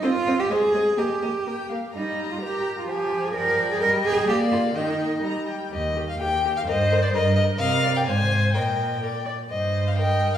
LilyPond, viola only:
\new Staff \with { instrumentName = "Viola" } { \time 2/4 \key ees \major \tempo 4 = 127 c'8 c'8 aes8 aes8 | bes8 bes8 bes8 bes8 | g4 g'4 | f4 f4 |
g4 bes4 | ees4 g4 | r4 g'4 | c''4 bes'4~ |
bes'4 c''4 | bes'4 bes'8 d''8 | r4 ees''4 | }